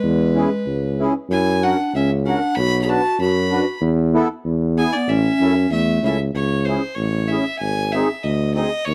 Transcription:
0.00 0.45 E2 loud
0.00 1.01 G#3 medium
0.00 1.01 B4 medium
0.35 0.49 C#4 medium
0.35 0.50 E4 medium
0.35 0.50 G#4 medium
0.66 1.08 C#2 medium
1.00 1.13 C#4 medium
1.00 1.14 E4 medium
1.00 1.14 G#4 medium
1.30 1.71 F#2 loud
1.30 1.65 E4 medium
1.30 1.65 G#5 loud
1.62 1.76 C#4 medium
1.62 1.94 D4 medium
1.62 1.76 F#4 medium
1.62 1.77 A#4 medium
1.62 1.94 F#5 medium
1.94 2.34 C#2 medium
1.94 2.10 C#4 medium
1.94 2.10 E5 medium
2.25 2.39 C#4 medium
2.25 2.60 D4 medium
2.25 2.40 F#4 medium
2.25 2.40 A#4 medium
2.25 2.57 F#5 loud
2.55 2.97 B1 loud
2.55 2.83 F#4 medium
2.55 2.81 B5 loud
2.82 2.94 G#4 medium
2.82 2.91 B5 medium
2.87 3.01 D4 medium
2.87 3.02 F#4 medium
2.87 3.02 B4 medium
2.87 3.19 A5 loud
2.92 3.21 F#4 medium
3.19 3.59 F#2 medium
3.19 3.78 F#4 medium
3.19 3.78 B5 loud
3.51 3.65 D4 medium
3.51 3.65 F#4 medium
3.51 3.65 B4 medium
3.81 4.22 E2 loud
4.13 4.27 B3 medium
4.13 4.28 E4 medium
4.13 4.28 A4 loud
4.44 4.85 E2 medium
4.77 4.91 B3 medium
4.77 4.91 E4 medium
4.77 4.97 E4 medium
4.77 4.91 G#4 medium
4.77 4.95 G#5 loud
4.93 5.11 B3 medium
4.93 5.11 D5 medium
5.07 5.29 A1 loud
5.07 5.71 C#4 medium
5.07 5.71 E5 loud
5.39 5.67 F#2 medium
5.39 5.54 C#4 medium
5.39 5.54 E4 medium
5.39 5.55 A4 medium
5.70 6.00 E2 medium
5.70 6.16 A3 medium
5.70 6.02 E5 medium
6.03 6.31 C#2 medium
6.03 6.17 C#4 medium
6.03 6.18 E4 medium
6.03 6.19 A4 medium
6.03 6.19 E5 medium
6.34 6.76 C#2 medium
6.34 6.67 C#5 loud
6.65 6.81 C#4 medium
6.65 6.81 E4 medium
6.65 6.96 C5 medium
6.70 6.82 G#4 medium
6.95 7.38 A1 medium
6.95 7.29 C#5 medium
7.28 7.44 C#4 medium
7.28 7.45 E4 medium
7.28 7.58 E5 medium
7.32 7.45 G#4 medium
7.58 8.02 G#1 medium
7.58 7.94 G#5 loud
7.92 8.08 C4 medium
7.92 8.08 D#4 medium
7.92 8.08 G#4 medium
7.92 8.25 E5 medium
8.23 8.65 D2 medium
8.23 8.53 D#5 medium
8.54 8.69 C4 medium
8.54 8.70 D#4 medium
8.54 8.70 G#4 medium
8.54 8.86 D#5 medium
8.85 8.94 D#2 loud
8.85 8.94 C#5 loud

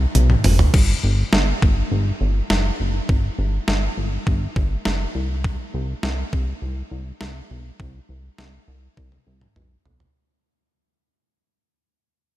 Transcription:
0.15 0.36 B1 loud
0.15 closed hi-hat medium
0.15 high tom medium
0.30 mid tom medium
0.44 0.65 F#1 medium
0.44 mid tom loud
0.44 open hi-hat medium
0.59 floor tom loud
0.74 0.94 G1 loud
0.74 kick loud
0.74 crash medium
1.03 1.24 G1 loud
1.33 1.53 G1 loud
1.33 snare loud
1.62 1.83 G1 medium
1.62 kick loud
1.92 2.12 G1 loud
2.21 2.41 G1 loud
2.50 2.71 F#1 loud
2.50 snare loud
2.80 3.00 F#1 medium
3.09 3.30 G1 loud
3.09 kick loud
3.39 3.59 G1 loud
3.68 3.89 G1 loud
3.68 snare loud
3.97 4.18 G1 loud
4.27 4.47 G1 loud
4.27 kick medium
4.56 4.77 G1 loud
4.56 kick medium
4.85 5.06 F#1 loud
4.85 snare loud
5.15 5.56 C2 loud
5.44 kick loud
5.74 5.94 C2 loud
6.03 6.24 C2 loud
6.03 snare loud
6.33 6.53 C2 medium
6.33 kick medium
6.62 6.83 C2 loud
6.91 7.12 C2 loud
7.21 7.41 C2 medium
7.21 snare loud
7.50 7.71 B1 medium
7.80 8.00 C2 loud
7.80 kick loud
8.09 8.30 C2 loud
8.38 8.59 C2 loud
8.38 snare loud
8.68 8.88 C2 loud
8.97 9.18 C2 loud
8.97 kick medium
8.97 high tom medium
9.12 high tom medium
9.27 9.47 C2 loud
9.41 mid tom medium
9.56 9.77 B1 medium
9.56 mid tom medium
9.85 10.06 B1 medium
9.85 floor tom medium
10.00 floor tom medium

